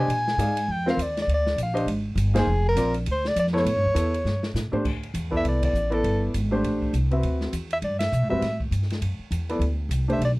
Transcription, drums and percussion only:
0.10 ride
0.28 snare
0.39 hi-hat pedal, ride
0.57 ride
0.87 snare
0.99 hi-hat pedal, ride
1.17 snare, ride
1.29 ride
1.47 snare
1.58 hi-hat pedal, ride
1.77 ride
1.88 ride
2.17 hi-hat pedal, ride
2.35 snare, ride
2.77 hi-hat pedal, ride
2.94 ride
3.06 ride
3.25 snare
3.36 hi-hat pedal, ride
3.47 snare
3.56 snare
3.66 ride
3.96 hi-hat pedal, ride
4.14 ride
4.26 snare
4.43 snare
4.56 snare, hi-hat pedal
4.73 floor tom
4.85 kick, crash
5.03 ride
5.14 hi-hat pedal, ride
5.32 kick
5.45 ride
5.62 kick, ride
5.75 hi-hat pedal
5.92 ride
6.04 ride
6.34 hi-hat pedal, ride
6.64 ride
6.82 kick
6.94 hi-hat pedal, ride
7.11 ride
7.23 ride
7.41 snare
7.53 hi-hat pedal, ride
7.70 ride
7.82 ride
8.00 snare, ride
8.12 hi-hat pedal
8.42 snare, ride
8.60 kick
8.72 hi-hat pedal, ride
8.82 snare
8.90 snare, ride
9.02 ride
9.32 hi-hat pedal, ride
9.49 ride
9.61 ride
9.91 hi-hat pedal, ride
10.10 ride
10.21 ride

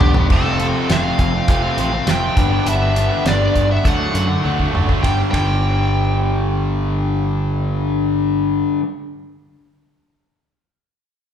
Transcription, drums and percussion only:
0.01 floor tom
0.14 floor tom
0.30 kick, crash
0.60 closed hi-hat
0.90 snare, closed hi-hat
1.19 kick, closed hi-hat
1.48 kick, closed hi-hat
1.78 closed hi-hat
2.07 snare, closed hi-hat
2.37 kick, closed hi-hat
2.67 closed hi-hat
2.96 closed hi-hat
3.26 snare, closed hi-hat
3.56 kick, closed hi-hat
3.85 kick, closed hi-hat
4.15 closed hi-hat
4.45 high tom
4.59 kick
4.75 mid tom
4.89 kick
5.04 kick, ride
5.33 kick, ride

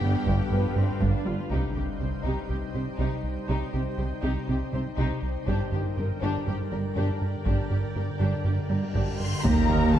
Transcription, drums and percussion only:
0.28 taiko
1.02 taiko
1.52 taiko
2.26 taiko
5.48 taiko
6.22 taiko
7.46 taiko
8.95 taiko
9.45 taiko
9.94 taiko mid

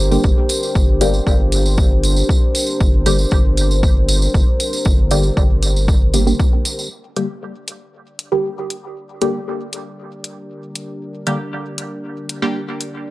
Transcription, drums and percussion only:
0.12 tambourine
0.23 kick, tambourine
0.49 closed hi-hat, tambourine
0.63 tambourine
0.75 kick, tambourine
1.01 closed hi-hat, tambourine
1.14 tambourine
1.27 kick, tambourine
1.52 closed hi-hat, tambourine
1.66 tambourine
1.77 kick, tambourine
2.04 closed hi-hat, tambourine
2.17 tambourine
2.29 kick, tambourine
2.55 closed hi-hat, tambourine
2.67 tambourine
2.80 kick, tambourine
3.06 closed hi-hat, tambourine
3.19 tambourine
3.31 kick, tambourine
3.57 closed hi-hat, tambourine
3.71 tambourine
3.83 kick, tambourine
4.08 closed hi-hat, tambourine
4.22 tambourine
4.34 kick, tambourine
4.60 closed hi-hat, tambourine
4.73 tambourine
4.85 kick, tambourine
5.11 closed hi-hat, tambourine
5.23 tambourine
5.37 kick, tambourine
5.62 closed hi-hat, tambourine
5.76 tambourine
5.88 kick, tambourine
6.14 closed hi-hat, tambourine
6.27 tambourine
6.40 kick, tambourine
6.65 closed hi-hat, tambourine
6.79 tambourine
7.17 closed hi-hat
7.68 closed hi-hat
8.19 closed hi-hat
8.70 closed hi-hat
9.22 closed hi-hat
9.73 closed hi-hat
10.24 closed hi-hat
10.76 closed hi-hat
11.27 closed hi-hat
11.78 closed hi-hat
12.29 closed hi-hat
12.81 closed hi-hat

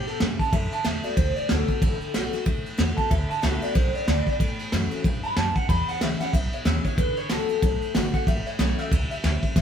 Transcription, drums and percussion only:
0.07 ride
0.20 snare, ride
0.39 kick, ride
0.53 kick, ride
0.72 ride
0.85 snare, ride
1.04 ride
1.17 kick, ride
1.36 ride
1.49 snare, ride
1.69 kick, ride
1.82 kick, ride
2.01 ride
2.14 snare, ride
2.33 snare, ride
2.46 kick, ride
2.66 ride
2.78 snare, ride
2.98 kick, ride
3.11 kick, ride
3.30 ride
3.43 snare, ride
3.63 ride
3.75 kick, ride
3.95 ride
4.08 snare, ride
4.27 kick, ride
4.40 kick, ride
4.59 ride
4.72 snare, ride
4.91 ride
5.04 kick, ride
5.23 ride
5.36 snare, ride
5.56 kick, ride
5.69 kick, ride
5.88 ride
6.01 snare, ride
6.20 snare, ride
6.33 kick, ride
6.53 ride
6.65 snare, ride
6.84 kick, ride
6.97 kick, ride
7.16 ride
7.29 snare, ride
7.49 ride
7.62 kick, ride
7.82 ride
7.95 snare, ride
8.14 kick, ride
8.27 kick, ride
8.46 ride
8.59 snare, ride
8.78 snare, ride
8.92 kick, ride
9.11 ride
9.24 snare, ride
9.43 kick, ride
9.56 kick, snare

